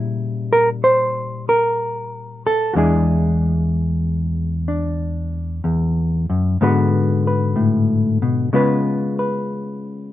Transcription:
Already playing: A#2 C#3 G3 E4 A#4
0.53 A#4
0.84 C5
1.49 A#4
2.47 A4
2.74 E2 G#3 D4 E4 F#4
2.78 G#4
4.68 D4
5.64 E2
6.30 F#2
6.61 G#2 D3 B3 F#4 B4
7.27 B4
7.56 A2
8.22 B2
8.53 C#3 G#3 B3 F4 B4
9.19 B4

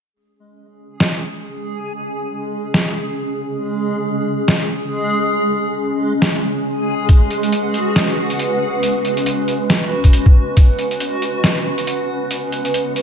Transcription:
0.13 G#3 C#4 G#4
1.00 snare
2.74 snare
4.48 snare
6.22 snare
7.09 F#4 B4, kick, closed hi-hat
7.31 closed hi-hat
7.43 closed hi-hat
7.52 closed hi-hat
7.74 closed hi-hat
7.96 snare, closed hi-hat
8.30 closed hi-hat
8.39 closed hi-hat
8.83 closed hi-hat
9.05 closed hi-hat
9.17 closed hi-hat
9.26 closed hi-hat
9.48 closed hi-hat
9.70 snare, closed hi-hat
10.04 kick, closed hi-hat
10.13 closed hi-hat
10.26 kick
10.57 kick, closed hi-hat
10.79 closed hi-hat
10.91 closed hi-hat
11.00 closed hi-hat
11.22 closed hi-hat
11.44 snare, closed hi-hat
11.78 closed hi-hat
11.87 closed hi-hat
12.31 closed hi-hat
12.52 closed hi-hat
12.65 closed hi-hat
12.74 closed hi-hat
12.96 closed hi-hat

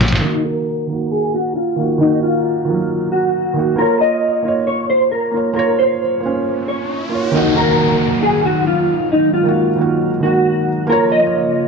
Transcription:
Already playing: A#1 C3 C#3 F3 A#3 F4 C#5 F5
0.01 snare, closed hi-hat
0.08 closed hi-hat
0.12 snare, closed hi-hat
0.20 D#3 A#3 D#4
0.26 F#4
0.45 A#4
0.87 D#3 A#3
0.92 F#4
1.11 G#4
1.34 F#4
1.56 F4
1.76 D#3 A#3
1.81 F#4
1.98 D#3 A#3 D#4
2.03 F#4
2.23 F4
2.65 D#3 A#3
2.70 F#3
3.12 F#4
3.53 D#3 A#3
3.59 F#4
3.76 A#3 F4 A#4
3.81 C#5
4.01 D#5
4.43 A#3 F4
4.48 C#5
4.67 C#5
4.90 C5
5.11 A#4
5.31 A#3 F4
5.37 C#5
5.54 A#3 F4 A#4, riser
5.59 C#5
5.79 C5
6.20 A#3 F4
6.26 C#4
6.68 C#5
7.09 A#3 F4
7.14 C#5
7.31 D#3 F#3 A#3 D#4, downlifter
7.37 F#4
7.56 A#4
7.65 D#3 A#3
7.71 F#4
8.23 G#4
8.45 F#4
8.67 F4
9.12 G#3 D#4
9.34 F4
9.43 D#3 A#3
9.48 F#4
9.76 D#3 A#3
9.81 F#4
10.20 D#3 A#3 F#4
10.25 F#4
10.87 C#3 F3 A#3 F4 A#4
10.92 C#5
11.12 D#5
11.21 A#3 F4
11.26 C#5

